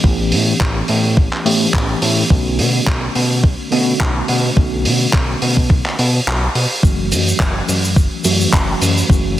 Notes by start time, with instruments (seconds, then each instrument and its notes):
0.03 analog synth bass A1, tine electric piano E3 A3 B3 C#4 G4, kick
0.32 analog synth bass A2, open hi-hat
0.60 analog synth bass A1, kick, clap
0.88 analog synth bass A2, open hi-hat
1.17 analog synth bass A1, kick
1.33 clap
1.45 analog synth bass A2, tine electric piano E3 A3 B3 C#4 G4, open hi-hat
1.74 analog synth bass A1, kick, clap
2.02 analog synth bass A2, open hi-hat
2.29 analog synth bass B1, tine electric piano D3 A3 B3 C#4 F#4, kick
2.59 analog synth bass B2, open hi-hat
2.87 analog synth bass B1, kick, clap
3.15 analog synth bass B2, open hi-hat
3.44 analog synth bass B1, kick
3.71 analog synth bass B2, tine electric piano D3 A3 B3 C#4 F#4, open hi-hat
4.00 analog synth bass B1, kick, clap
4.28 analog synth bass B2, open hi-hat
4.55 analog synth bass B1, tine electric piano D3 A3 B3 C#4 F#4, kick
4.85 analog synth bass B2, open hi-hat
5.13 analog synth bass B1, kick, clap
5.42 analog synth bass B2, open hi-hat
5.57 kick
5.70 analog synth bass B1, kick
5.86 clap
5.99 analog synth bass B2, open hi-hat
6.27 analog synth bass B1, clap
6.55 analog synth bass B2, open hi-hat
6.82 analog synth bass F#1, tine electric piano E3 F#3 A3 C#4 F#4, kick, shaker
7.12 analog synth bass F#2, open hi-hat, shaker
7.28 shaker
7.40 analog synth bass F#1, kick, clap, shaker
7.68 analog synth bass F#2, open hi-hat, shaker
7.84 shaker
7.96 analog synth bass F#1, kick, shaker
8.23 analog synth bass F#2, tine electric piano E3 F#3 A3 C#4 F#4, open hi-hat, shaker
8.41 shaker
8.53 analog synth bass F#1, kick, clap, shaker
8.81 analog synth bass F#2, open hi-hat, shaker
8.98 shaker
9.08 analog synth bass F#1, tine electric piano E3 F#3 A3 C#4 F#4, kick, shaker